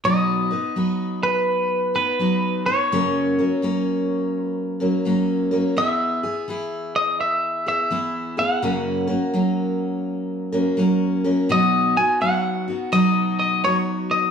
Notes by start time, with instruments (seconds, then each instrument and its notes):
0.04 steel-string acoustic guitar B2 F#3 B3 D#4 B4, clean electric guitar D#5
0.51 steel-string acoustic guitar B3 D#4 B4
0.76 steel-string acoustic guitar F#3 B3 D#4 B4
1.23 clean electric guitar B4
1.94 steel-string acoustic guitar B3 D#4 B4, clean electric guitar B4
2.19 steel-string acoustic guitar F#3 B3 D#4 B4
2.66 steel-string acoustic guitar B3 D#4 B4, clean electric guitar C#5
2.92 steel-string acoustic guitar F#2 C#3 F#3 A#3 C#4 A#4
3.39 steel-string acoustic guitar F#3 A#3 C#4 A#4
3.62 steel-string acoustic guitar F#3 A#3 C#4 A#4
4.45 clean electric guitar B4
4.80 steel-string acoustic guitar F#3 A#3 C#4 A#4
5.05 steel-string acoustic guitar F#3 A#3 C#4 A#4
5.51 steel-string acoustic guitar F#3 A#3 C#4 A#4
5.76 steel-string acoustic guitar E3 B3 E4 G#4, clean electric guitar E5
6.23 steel-string acoustic guitar B3 E4 G#4
6.48 steel-string acoustic guitar E3 B3 E4 G#4
6.96 clean electric guitar D#5
7.21 clean electric guitar E5
7.66 steel-string acoustic guitar B3 E4 G#4, clean electric guitar E5
7.91 steel-string acoustic guitar E3 B3 E4 G#4
8.37 steel-string acoustic guitar B3 E4 G#4, clean electric guitar F#5
8.62 steel-string acoustic guitar F#2 C#3 F#3 A#3 C#4 A#4
9.07 steel-string acoustic guitar F#3 A#3 C#4 A#4
9.34 steel-string acoustic guitar F#3 A#3 C#4 A#4
10.52 steel-string acoustic guitar F#3 A#3 C#4 A#4
10.77 steel-string acoustic guitar F#3 A#3 C#4 A#4
11.24 steel-string acoustic guitar F#3 A#3 C#4 A#4
11.49 steel-string acoustic guitar B2 F#3 B3 D#4 F#4, clean electric guitar D#5
11.97 steel-string acoustic guitar B3 D#4 F#4, clean electric guitar G#5
12.21 steel-string acoustic guitar F#3 B3 D#4 F#4, clean electric guitar F#5
12.68 steel-string acoustic guitar B3 D#4 F#4
12.92 steel-string acoustic guitar B2 F#3 B3 D#4 F#4, clean electric guitar D#5
13.39 clean electric guitar D#5
13.64 steel-string acoustic guitar F#3 B3 D#4 F#4, clean electric guitar C#5
14.11 clean electric guitar D#5